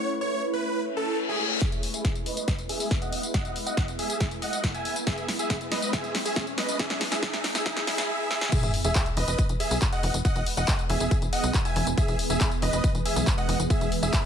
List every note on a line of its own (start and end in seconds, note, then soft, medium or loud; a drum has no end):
0.00 1.58 A3 medium
0.00 1.58 C#4 medium
0.00 1.58 E4 medium
0.00 1.58 B4 medium
0.00 1.58 C#5 medium
0.21 0.42 C#5 medium
0.53 0.81 B4 loud
0.53 0.81 B4 medium
0.75 reverse cymbal medium
0.97 1.17 A4 medium
1.29 1.50 G#4 loud
1.29 1.50 G#4 medium
1.61 8.05 G#3 medium
1.61 8.05 B3 medium
1.61 8.05 E4 medium
1.61 1.82 G#4 medium
1.61 8.05 B4 medium
1.61 1.82 E5 medium
1.61 8.05 E5 medium
1.61 kick loud
1.61 snare soft
1.61 closed hi-hat medium
1.61 tambourine soft
1.61 riser medium
1.72 closed hi-hat medium
1.72 tambourine soft
1.83 open hi-hat loud
1.94 2.14 G#4 medium
1.94 2.14 E5 loud
1.94 closed hi-hat medium
1.94 tambourine medium
2.05 kick loud
2.05 snare soft
2.05 closed hi-hat medium
2.05 tambourine soft
2.15 closed hi-hat medium
2.15 tambourine soft
2.26 2.54 B4 medium
2.26 2.54 D#5 medium
2.26 open hi-hat loud
2.37 closed hi-hat medium
2.37 tambourine medium
2.48 kick loud
2.48 snare medium
2.48 closed hi-hat medium
2.48 tambourine soft
2.59 closed hi-hat medium
2.59 tambourine soft
2.69 2.90 G#4 medium
2.69 2.90 E5 medium
2.69 open hi-hat loud
2.80 open hi-hat medium
2.80 tambourine medium
2.91 kick loud
2.91 snare medium
2.91 closed hi-hat medium
2.91 tambourine soft
3.02 3.22 D#5 medium
3.02 3.22 F#5 loud
3.02 closed hi-hat medium
3.02 tambourine soft
3.12 open hi-hat loud
3.23 closed hi-hat medium
3.23 tambourine medium
3.34 3.55 D#5 medium
3.34 3.55 F#5 loud
3.34 kick loud
3.34 snare medium
3.34 closed hi-hat medium
3.34 tambourine soft
3.45 closed hi-hat medium
3.45 tambourine soft
3.56 open hi-hat loud
3.66 3.87 D#5 medium
3.66 3.87 F#5 loud
3.66 closed hi-hat medium
3.66 tambourine medium
3.77 kick loud
3.77 snare medium
3.77 closed hi-hat medium
3.77 tambourine soft
3.88 closed hi-hat medium
3.88 tambourine soft
3.99 4.26 G#4 medium
3.99 4.26 E5 medium
3.99 open hi-hat loud
4.10 closed hi-hat medium
4.10 tambourine medium
4.20 kick loud
4.20 snare medium
4.20 closed hi-hat medium
4.20 tambourine soft
4.31 closed hi-hat medium
4.31 tambourine soft
4.42 4.63 D#5 medium
4.42 4.63 F#5 loud
4.42 open hi-hat loud
4.53 closed hi-hat medium
4.53 tambourine medium
4.64 kick loud
4.64 snare medium
4.64 closed hi-hat medium
4.64 tambourine soft
4.74 4.95 E5 medium
4.74 4.95 G#5 loud
4.74 closed hi-hat medium
4.74 tambourine soft
4.85 open hi-hat loud
4.96 closed hi-hat medium
4.96 tambourine medium
5.07 5.27 G#4 medium
5.07 5.27 E5 medium
5.07 kick loud
5.07 snare medium
5.07 closed hi-hat medium
5.07 tambourine medium
5.18 closed hi-hat soft
5.18 tambourine soft
5.28 snare medium
5.28 open hi-hat loud
5.39 5.60 G#4 medium
5.39 5.60 E5 medium
5.39 closed hi-hat medium
5.39 tambourine medium
5.50 kick loud
5.50 snare medium
5.50 closed hi-hat medium
5.50 tambourine medium
5.61 closed hi-hat medium
5.61 tambourine soft
5.71 5.91 B4 medium
5.71 5.91 D#5 medium
5.71 snare medium
5.71 open hi-hat loud
5.82 closed hi-hat soft
5.82 tambourine medium
5.93 6.14 G#4 medium
5.93 6.14 E5 loud
5.93 kick loud
5.93 snare medium
5.93 closed hi-hat medium
5.93 tambourine medium
6.04 closed hi-hat medium
6.04 tambourine soft
6.15 snare medium
6.15 open hi-hat loud
6.25 6.46 G#4 medium
6.25 6.46 E5 medium
6.25 open hi-hat medium
6.25 tambourine medium
6.36 kick loud
6.36 snare medium
6.36 closed hi-hat medium
6.36 tambourine medium
6.47 closed hi-hat medium
6.47 tambourine soft
6.58 6.78 B4 medium
6.58 6.78 D#5 medium
6.58 snare medium
6.58 open hi-hat loud
6.69 closed hi-hat medium
6.69 tambourine medium
6.79 7.00 G#4 medium
6.79 7.00 E5 loud
6.79 kick loud
6.79 snare medium
6.79 closed hi-hat medium
6.79 tambourine medium
6.90 snare medium
6.90 closed hi-hat soft
6.90 tambourine soft
7.01 snare medium
7.01 open hi-hat loud
7.12 7.21 G#4 medium
7.12 7.21 E5 loud
7.12 snare medium
7.12 tambourine medium
7.22 7.43 G#4 medium
7.22 7.43 E5 loud
7.22 kick loud
7.22 snare loud
7.22 closed hi-hat medium
7.22 tambourine medium
7.33 snare medium
7.33 closed hi-hat medium
7.33 tambourine soft
7.44 snare loud
7.44 open hi-hat loud
7.55 7.64 G#4 medium
7.55 7.64 E5 medium
7.55 snare medium
7.55 closed hi-hat medium
7.55 tambourine medium
7.66 7.86 G#4 medium
7.66 7.86 E5 loud
7.66 kick loud
7.66 snare loud
7.66 closed hi-hat medium
7.66 tambourine medium
7.77 snare medium
7.77 closed hi-hat medium
7.77 tambourine soft
7.87 8.07 G#4 medium
7.87 8.07 E5 loud
7.87 snare loud
7.87 open hi-hat loud
7.98 snare loud
7.98 closed hi-hat medium
7.98 tambourine medium
8.09 8.29 G#4 medium
8.09 8.29 E5 loud
8.30 8.50 G#4 medium
8.30 8.50 E5 loud
8.30 snare medium
8.41 snare loud
8.52 14.25 E3 medium
8.52 14.25 G#3 medium
8.52 14.25 B3 medium
8.52 8.73 G#4 medium
8.52 14.25 G#4 medium
8.52 14.25 B4 medium
8.52 8.73 E5 loud
8.52 kick loud
8.52 closed hi-hat loud
8.52 crash loud
8.52 tambourine medium
8.52 sub drop medium
8.63 8.71 E1 medium
8.63 closed hi-hat medium
8.63 tambourine soft
8.74 open hi-hat loud
8.84 8.93 E1 medium
8.84 9.05 G#4 medium
8.84 9.05 E5 loud
8.84 closed hi-hat medium
8.84 tambourine medium
8.95 kick loud
8.95 clap loud
8.95 closed hi-hat loud
8.95 tambourine medium
9.06 closed hi-hat medium
9.06 tambourine soft
9.17 9.25 E1 loud
9.17 9.44 B4 medium
9.17 9.44 D#5 loud
9.17 9.44 D#5 medium
9.17 open hi-hat loud
9.28 9.36 E1 medium
9.28 tambourine medium
9.38 kick loud
9.38 closed hi-hat loud
9.38 tambourine medium
9.49 9.57 E1 medium
9.49 closed hi-hat medium
9.49 tambourine soft
9.60 9.81 G#4 medium
9.60 9.81 E5 medium
9.60 open hi-hat loud
9.71 9.79 B1 medium
9.71 open hi-hat medium
9.71 tambourine medium
9.82 kick loud
9.82 clap loud
9.82 closed hi-hat loud
9.82 tambourine medium
9.92 10.13 D#5 medium
9.92 10.13 F#5 loud
9.92 10.13 F#5 medium
9.92 closed hi-hat medium
9.92 tambourine soft
10.03 10.11 E1 loud
10.03 open hi-hat loud
10.14 10.22 E1 medium
10.14 closed hi-hat medium
10.14 tambourine medium
10.25 10.45 D#5 medium
10.25 10.45 F#5 loud
10.25 kick loud
10.25 closed hi-hat loud
10.25 tambourine soft
10.36 10.44 E1 medium
10.36 closed hi-hat medium
10.36 tambourine soft
10.46 open hi-hat loud
10.57 10.65 E1 medium
10.57 10.78 D#5 medium
10.57 10.78 F#5 loud
10.57 closed hi-hat medium
10.57 tambourine medium
10.68 kick loud
10.68 clap loud
10.68 closed hi-hat loud
10.68 tambourine medium
10.79 closed hi-hat medium
10.79 tambourine soft
10.89 10.98 E1 loud
10.89 11.17 G#4 medium
10.89 11.17 E5 loud
10.89 11.17 E5 medium
10.89 open hi-hat loud
11.00 11.08 E1 medium
11.00 closed hi-hat medium
11.00 tambourine medium
11.11 kick loud
11.11 closed hi-hat loud
11.11 tambourine medium
11.22 11.30 E1 medium
11.22 closed hi-hat medium
11.22 tambourine soft
11.33 11.53 D#5 medium
11.33 11.53 F#5 loud
11.33 11.53 F#5 medium
11.33 open hi-hat loud
11.44 11.52 B1 medium
11.44 closed hi-hat medium
11.44 tambourine medium
11.54 kick loud
11.54 clap loud
11.54 closed hi-hat medium
11.54 tambourine soft
11.65 11.86 E5 medium
11.65 11.86 G#5 loud
11.65 closed hi-hat medium
11.65 tambourine soft
11.76 11.84 E1 loud
11.76 open hi-hat loud
11.87 11.95 E1 medium
11.87 closed hi-hat medium
11.87 tambourine medium
11.97 12.18 G#4 medium
11.97 12.18 E5 loud
11.97 kick loud
11.97 closed hi-hat medium
11.97 tambourine medium
12.08 12.16 E1 medium
12.08 closed hi-hat medium
12.08 tambourine soft
12.19 open hi-hat loud
12.30 12.38 E1 medium
12.30 12.50 G#4 medium
12.30 12.50 E5 loud
12.30 tambourine medium
12.41 kick loud
12.41 clap loud
12.41 closed hi-hat medium
12.41 tambourine medium
12.52 closed hi-hat medium
12.52 tambourine soft
12.62 12.70 E1 loud
12.62 12.90 B4 medium
12.62 12.90 D#5 loud
12.62 open hi-hat loud
12.73 12.81 E1 medium
12.73 closed hi-hat medium
12.73 tambourine medium
12.84 kick loud
12.84 closed hi-hat medium
12.84 tambourine medium
12.95 13.03 E1 medium
12.95 closed hi-hat medium
12.95 tambourine soft
13.05 13.26 G#4 medium
13.05 13.26 E5 loud
13.05 13.26 E5 medium
13.05 open hi-hat loud
13.16 13.24 B1 medium
13.16 open hi-hat medium
13.16 tambourine medium
13.27 kick loud
13.27 clap loud
13.27 closed hi-hat medium
13.27 tambourine medium
13.38 13.58 D#5 medium
13.38 13.58 F#5 loud
13.38 closed hi-hat medium
13.38 tambourine soft
13.49 13.57 E1 medium
13.49 open hi-hat loud
13.59 13.67 E1 medium
13.59 closed hi-hat medium
13.59 tambourine medium
13.70 13.91 G#4 medium
13.70 13.91 E5 loud
13.70 kick loud
13.70 closed hi-hat medium
13.70 tambourine medium
13.81 13.89 E1 medium
13.81 closed hi-hat soft
13.81 tambourine soft
13.92 open hi-hat loud
14.02 14.11 E1 medium
14.02 14.23 G#4 medium
14.02 14.23 E5 loud
14.02 closed hi-hat medium
14.02 tambourine medium
14.13 kick loud
14.13 clap loud
14.13 closed hi-hat medium
14.13 tambourine medium